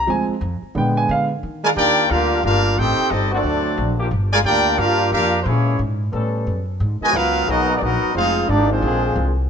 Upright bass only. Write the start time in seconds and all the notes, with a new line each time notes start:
0.08 D2
0.28 muted upright bass stroke
0.41 F2
0.62 muted upright bass stroke
0.75 A#2
1.09 D3
1.43 D#3
1.77 D#2
2.10 D2
2.44 G1
2.77 A1
2.99 muted upright bass stroke
3.11 G1
3.43 D2
3.77 A#1
4.11 G1
4.44 D2
4.78 G2
5.12 F2
5.45 A#2
5.79 G#2
6.13 A2
6.47 F#2
6.80 G#2
7.01 muted upright bass stroke
7.13 C#2
7.48 B1
7.81 A#1
8.03 muted upright bass stroke
8.15 F1
8.49 G#1
8.82 A#1
9.16 C2